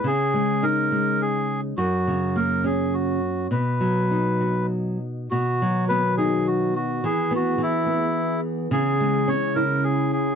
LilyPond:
<<
  \new Staff \with { instrumentName = "Melodica" } { \time 3/4 \key b \major \tempo 4 = 104 gis'4 ais'4 gis'8. r16 | fis'4 ais'8 gis'8 fis'4 | b'2 r4 | fis'4 b'8 gis'8 fis'8 fis'8 |
gis'8 fis'8 e'4. r8 | gis'4 cis''8 ais'8 gis'8 gis'8 | }
  \new Staff \with { instrumentName = "Ambient pad" } { \time 3/4 \key b \major << { r2. | r2. | r2. | <dis fis'>2. |
<e gis'>2. | <cis e'>2. | } \\ { r2. | r2. | r2. | b2.~ |
b2. | cis'2. | } >> }
  \new Staff \with { instrumentName = "Nylon-string guitar" } { \clef bass \time 3/4 \key b \major cis8 gis8 dis'8 gis4. | fis,8 cis8 ais8 cis'4. | b,8 fis8 dis'8 fis'4. | b,8 fis8 b8 dis'4. |
e8 b8 e8 b4. | cis8 gis8 cis'8 e'4. | }
>>